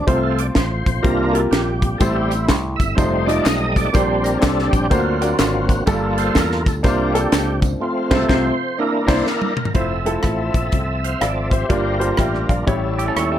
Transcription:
Already playing: french horn section F3
0.07 fingered electric bass C2, grand piano C3 A3 C4 F4 C5, tonewheel organ A3 C4 F4, french horn section A3 C4 F4, kick, closed hi-hat
0.23 tonewheel organ A4
0.38 tonewheel organ D5, closed hi-hat
0.55 fingered electric bass A1, tonewheel organ C5, kick, snare, closed hi-hat
0.86 fingered electric bass A#1, kick, closed hi-hat
1.02 fingered electric bass C2, grand piano C3 A#3 F4 G4 C5, french horn section G3 A#3, tonewheel organ A#3 D4 F4 A#4, kick, closed hi-hat
1.33 grand piano A#3 E4 G4 A#4, tonewheel organ A4, closed hi-hat
1.39 grand piano F4
1.51 fingered electric bass A#1, tonewheel organ G4, snare, closed hi-hat
1.82 kick, closed hi-hat
1.98 fingered electric bass A1, grand piano A2 A3 E4 G4 C5, tonewheel organ G3 C4 E4 A4, french horn section A3 C4 E4, kick, closed hi-hat, tambourine
2.13 tonewheel organ G4
2.31 tonewheel organ E4, closed hi-hat, tambourine
2.48 fingered electric bass C2, kick, snare, clap, closed hi-hat, tambourine
2.76 fingered electric bass G1, tonewheel organ E5, kick
2.80 closed hi-hat, tambourine
2.95 fingered electric bass F1, french horn section F3 D#4, tonewheel organ G3 A3 D#4 C5, grand piano A3 D#4 F4 C5, kick, closed hi-hat, tambourine
3.26 grand piano A3 D#4 F4 D#5, tonewheel organ D5, closed hi-hat, tambourine
3.44 fingered electric bass B1, tonewheel organ D#5, snare, clap, closed hi-hat, tambourine
3.76 tonewheel organ D5, kick, closed hi-hat, tambourine
3.93 fingered electric bass A#1, grand piano A#2 A#3 D4 G4 C5, tonewheel organ G3 C4 D4 C5, french horn section G3 A#3 D4, kick, closed hi-hat, tambourine
4.23 tonewheel organ A#4, closed hi-hat, tambourine
4.39 tonewheel organ G#4 A4, snare, clap, tambourine
4.43 fingered electric bass C2, kick, closed hi-hat
4.59 snare
4.71 fingered electric bass A#1, tonewheel organ G4, kick, closed hi-hat, tambourine
4.90 fingered electric bass D2, grand piano D3 A#3 D4 F#4 C5, french horn section F#3, tonewheel organ A#3 C4 F4 F#4, kick, closed hi-hat, tambourine
5.21 grand piano A#3 D4 F#4 D5, closed hi-hat, tambourine
5.38 fingered electric bass G#1, tonewheel organ F4, snare, clap, closed hi-hat, tambourine
5.69 kick, closed hi-hat, tambourine
5.86 fingered electric bass G1, grand piano G2 G3 A3 F4 A4, french horn section G3 F4 A4, tonewheel organ A#3 F4 A4, kick, closed hi-hat, tambourine
5.92 grand piano A#3
6.18 tonewheel organ C5, closed hi-hat, tambourine
6.35 fingered electric bass E2, tonewheel organ A#4, kick, snare, clap, closed hi-hat, tambourine
6.51 snare
6.66 fingered electric bass D2, tonewheel organ A4, kick, closed hi-hat, tambourine
6.83 fingered electric bass C2, grand piano C3 A#3 D4 F4 C5, french horn section F3 A#3 C4 D4, tonewheel organ A#3 D4 F4 G4, kick, snare, closed hi-hat, tambourine
7.13 grand piano A#3 D4 F4 A4, closed hi-hat, tambourine
7.32 fingered electric bass C#2, snare, clap, closed hi-hat, tambourine
7.62 kick, closed hi-hat, tambourine
7.80 tonewheel organ A3 C4 F4, french horn section A3 F4
8.11 fingered electric bass C2, grand piano C3 C4 F4 C5, tonewheel organ A4, kick, snare, crash
8.16 grand piano A3
8.28 fingered electric bass C2, grand piano C3 C4 F4 C5, tonewheel organ C5, kick, snare
8.34 grand piano A3
8.78 french horn section E3 A#3 D4, tonewheel organ A#3 D4 E4 A#4
9.07 fingered electric bass C2, grand piano A#3 D4 E4 C5, kick, snare, crash
9.11 tonewheel organ C5
9.27 tonewheel organ A#4, snare
9.42 high tom
9.57 mid tom
9.65 floor tom
9.74 fingered electric bass F1, tonewheel organ F3 C4 A4 E5, french horn section F3 A3 C4 E5, grand piano A3 E4 F4 C5, kick, closed hi-hat
10.05 grand piano A3 E4 F4 A4, closed hi-hat
10.23 fingered electric bass A1, kick, cross-stick, closed hi-hat
10.54 fingered electric bass A#1, kick, closed hi-hat
10.72 fingered electric bass C2, kick, cross-stick, closed hi-hat
11.04 tonewheel organ C5 F5, closed hi-hat
11.21 fingered electric bass G#1, tonewheel organ A4 D5, grand piano D5 F5, cross-stick, closed hi-hat
11.51 tonewheel organ G4 C5, grand piano C5 E5, kick, closed hi-hat
11.69 fingered electric bass G1, grand piano G2 A#3 F4 G4 D5, tonewheel organ G3 D4 F4 A#4, french horn section G3 A#3 D4 F4, kick, closed hi-hat
11.99 grand piano A#3 F4 G4 C5, closed hi-hat
12.17 fingered electric bass A1, grand piano E5 G5, kick, cross-stick, closed hi-hat
12.34 cross-stick
12.49 fingered electric bass A#1, grand piano D5 F5, kick, closed hi-hat
12.67 fingered electric bass A1, grand piano A2 A3 E4 G4 C#5, tonewheel organ G3 C#4 E4 A4, french horn section A3 C#4 E4, kick, cross-stick, closed hi-hat
12.99 clean electric guitar G4, closed hi-hat
13.08 clean electric guitar C#4 A4
13.16 fingered electric bass D#2, clean electric guitar E4 C#5, cross-stick, closed hi-hat
13.32 clean electric guitar G4 E5

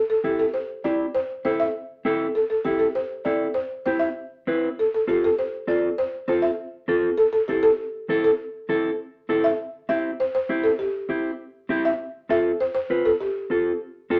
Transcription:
0.10 marimba A4
0.24 clean electric guitar C4 E4 A4, marimba G4
0.39 marimba A4
0.54 marimba C5
0.84 clean electric guitar C4 E4 G4, marimba D5
1.15 marimba C5
1.45 clean electric guitar C4 E4 A4, marimba C5
1.60 marimba E5
2.05 clean electric guitar C4 E4 A4
2.35 marimba A4
2.50 marimba A4
2.65 clean electric guitar C4 E4 A4, marimba G4
2.79 marimba A4
2.95 marimba C5
3.25 clean electric guitar C4 E4 A4, marimba D5
3.54 marimba C5
3.86 clean electric guitar C4 E4 G4, marimba C5
3.99 marimba E5
4.47 clean electric guitar C4 E4 B4
4.79 marimba A4
4.94 marimba A4
5.07 clean electric guitar C4 F4 A4, marimba G4
5.24 marimba A4
5.39 marimba C5
5.67 clean electric guitar C4 F4 A4, marimba D5
5.98 marimba C5
6.28 clean electric guitar C4 F4 A4, marimba C5
6.42 marimba E5
6.88 clean electric guitar C4 F4 A4
7.18 marimba A4
7.33 marimba A4
7.48 clean electric guitar C4 E4 A4, marimba G4
7.63 marimba A4
8.09 clean electric guitar C4 E4 A4
8.24 marimba A4
8.69 clean electric guitar C4 E4 A4
9.29 clean electric guitar C4 E4 A4
9.44 marimba E5
9.89 clean electric guitar C4 E4 G4, marimba E5
10.20 marimba C5
10.35 marimba C5
10.49 clean electric guitar C4 E4 G4
10.64 marimba A4
10.79 marimba G4
11.09 clean electric guitar C4 E4 G4
11.69 clean electric guitar C4 E4 G4
11.85 marimba E5
12.29 clean electric guitar C4 F4 A4, marimba E5
12.61 marimba C5
12.75 marimba C5
12.90 clean electric guitar C4 F4 B4
13.05 marimba A4
13.21 marimba G4
13.50 clean electric guitar C4 F4 A4
14.10 clean electric guitar C4 F4 A4

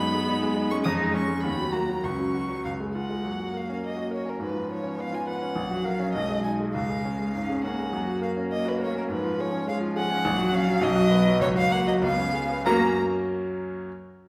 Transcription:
Already playing: grand piano F#2 G#3, cello B3, violin B5
0.00 grand piano D#4
0.15 grand piano G#3
0.28 grand piano D#4
0.43 grand piano G#3
0.56 grand piano D#4
0.70 grand piano G#3, cello C#4, violin C#6
0.84 grand piano F2, cello D#4, violin D#6
1.00 grand piano G#3
1.14 grand piano C#4, cello C#4, violin C#6
1.28 grand piano G#3
1.43 grand piano D#2, cello B3, violin B5
1.58 grand piano F#3
1.72 cello A#3, grand piano F#4, violin A#5
1.89 grand piano F#3
2.03 grand piano C#2, cello C#4, violin C#6
2.19 grand piano F#3
2.34 grand piano F#4
2.50 grand piano F#3
2.65 grand piano C#2, violin F5
2.80 grand piano G#3
2.95 grand piano F4, violin F#5
3.10 grand piano G#3
3.25 grand piano F#2, cello A#3
3.40 grand piano F#4
3.54 grand piano A#4, violin F5
3.69 grand piano C#4
3.83 grand piano A#3, violin D#5
3.96 grand piano F#4
4.11 grand piano A#4, violin C#5
4.25 grand piano C#4, violin A#4
4.40 grand piano G#2, cello F3, violin B4
4.54 grand piano F4
4.69 grand piano B4, violin C#5
4.83 grand piano C#4
4.98 grand piano B3, violin F5
5.12 grand piano F4, violin G#5
5.27 grand piano B4, violin F#5
5.42 grand piano C#4
5.56 grand piano A#1, cello F#3
5.71 grand piano F#4
5.85 grand piano A#4, violin F5
5.99 grand piano C#4
6.13 grand piano B1, cello G#3, violin D#5
6.30 grand piano G#4
6.44 grand piano D#4, violin G#5
6.60 grand piano G#3
6.74 grand piano C#2, violin F5
6.89 grand piano G#4
7.05 grand piano C#4
7.19 grand piano G#3
7.34 grand piano G#2, cello C#4, violin F5
7.49 grand piano G#4
7.64 cello A#3, grand piano C#4, violin F#5
7.79 grand piano G#3
7.93 grand piano F#2, cello A#3
8.07 grand piano F#4
8.22 grand piano A#4, violin F5
8.37 grand piano C#4
8.52 grand piano A#3, violin D#5
8.65 grand piano F#4, violin B4
8.80 grand piano A#4, violin C#5
8.95 grand piano C#4, violin A#4
9.09 grand piano G#2, cello F3, violin B4
9.24 grand piano F4
9.38 grand piano G#4, violin C#5
9.52 grand piano C#4
9.67 cello F3, grand piano G#3, violin F5
9.81 grand piano F4
9.96 grand piano G#4, violin F#5
10.11 grand piano C#4
10.25 grand piano A#1, cello F#3
10.39 grand piano F#4
10.53 grand piano C#4, violin F5
10.68 grand piano F#3
10.81 grand piano B1, cello F#3, violin D#5
10.95 grand piano F#4
11.11 grand piano B3
11.26 grand piano F#3
11.40 grand piano C#2, cello F#3, violin C#5
11.55 grand piano F#4, violin F5
11.71 grand piano A#3, violin F#5
11.86 grand piano F#3, violin D#5
12.02 grand piano C#2, cello B3, violin F5
12.18 grand piano C#4
12.33 grand piano G#4
12.49 grand piano B3
12.65 grand piano F#2 F#3 A#3 C#4 A#4, cello A#3, violin A#5

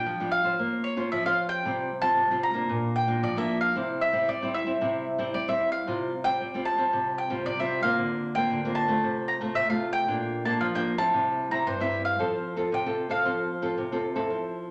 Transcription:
Already playing: nylon-string guitar G3 D4 F4, mandolin G5
0.06 nylon-string guitar F3
0.20 nylon-string guitar G3 D4 F4
0.32 mandolin F5
0.44 nylon-string guitar C#4 F4 C5
0.59 nylon-string guitar A#3
0.84 mandolin C#5
0.97 nylon-string guitar C#4 F4 C5
1.12 nylon-string guitar F3, mandolin E5
1.26 nylon-string guitar C#4 F4 C5, mandolin F5
1.49 mandolin G5
1.65 nylon-string guitar C3 G3 C4 F4
2.02 nylon-string guitar G3 C4 F4, mandolin A5
2.17 nylon-string guitar C3
2.31 nylon-string guitar G3 C4 F4
2.43 mandolin A#5
2.54 nylon-string guitar A#3 D4 F4
2.69 nylon-string guitar A#2
2.96 mandolin G5
3.07 nylon-string guitar A#3 D4 F4
3.23 nylon-string guitar F3, mandolin D5
3.37 nylon-string guitar A#3 D4 F4, mandolin E5
3.61 mandolin F5
3.75 nylon-string guitar C3 G3 C4 E4
4.01 mandolin E5
4.13 nylon-string guitar G3 C4 E4
4.28 nylon-string guitar G3, mandolin D5
4.42 nylon-string guitar G3 C4 E4
4.54 mandolin E5
4.66 nylon-string guitar G3 C4 E4
4.81 nylon-string guitar C3 G3 C4 E4
5.18 nylon-string guitar G3 C4 E4
5.34 nylon-string guitar G3, mandolin D5
5.48 nylon-string guitar G3 C4 E4, mandolin E5
5.72 mandolin F5
5.87 nylon-string guitar C3 G3 C4 F4
6.24 nylon-string guitar G3 C4 F4, mandolin G5
6.41 nylon-string guitar G3
6.54 nylon-string guitar G3 C4 F4
6.65 mandolin A5
6.78 nylon-string guitar G3 C4 F4
6.93 nylon-string guitar C3
7.18 mandolin G5
7.30 nylon-string guitar G3 C4 F4
7.45 nylon-string guitar C3, mandolin D5
7.60 nylon-string guitar G3 C4 F4, mandolin E5
7.83 nylon-string guitar A#3 C4 F4, mandolin F5
7.99 nylon-string guitar D3
8.35 nylon-string guitar A#3 C4 F4, mandolin G5
8.51 nylon-string guitar D3
8.65 nylon-string guitar A#3 C4 F4
8.75 mandolin A5
8.88 nylon-string guitar A3 C4 F4
9.04 nylon-string guitar C3
9.28 mandolin A#5
9.41 nylon-string guitar A3 C4 F4
9.55 nylon-string guitar C3, mandolin E5
9.70 nylon-string guitar A3 C4 F4, mandolin F5
9.93 mandolin G5
10.08 nylon-string guitar A#2 A#3 D4 F4
10.45 nylon-string guitar A#3 D4 F4, mandolin A5
10.61 nylon-string guitar F3, mandolin F5
10.75 nylon-string guitar A#3 D4 F4, mandolin G5
10.98 nylon-string guitar G3 C4 E4, mandolin A5
11.14 nylon-string guitar C3
11.51 nylon-string guitar G3 C4 E4, mandolin A#5
11.66 nylon-string guitar G2, mandolin C5
11.80 nylon-string guitar G3 C4 E4, mandolin E5
12.05 mandolin F5
12.19 nylon-string guitar F3 C4 F4 A4
12.56 nylon-string guitar C4 F4 A4
12.72 nylon-string guitar C3, mandolin G5
12.86 nylon-string guitar C4 F4 A4
13.09 nylon-string guitar C4 F4 A4, mandolin F5
13.25 nylon-string guitar F3 C4 F4 A4
13.62 nylon-string guitar C4 F4 A4
13.78 nylon-string guitar C3
13.92 nylon-string guitar C4 F4 A4
14.15 nylon-string guitar C4 E4 A4
14.30 nylon-string guitar F3

